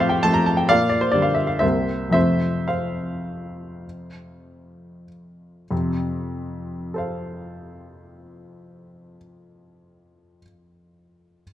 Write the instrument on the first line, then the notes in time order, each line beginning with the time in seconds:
grand piano
Already playing: A2 F3 A3 C4 A4 C5 D5 E5
0.00 F5
0.09 G5
0.23 F3 A3 C4 A5
0.34 A#5
0.46 A5
0.57 G5
0.69 A#2 D5 F5
0.89 D5
1.01 C5
1.12 D3 G3 A#3 D5
1.22 F5
1.35 E5
1.47 F5
1.59 C2 C3 G3 A#3 C5 E5
2.10 F2 C3 F3 C5 E5
2.14 A3
2.68 C5 F5
5.71 F2 C3
6.94 A4 C5 F5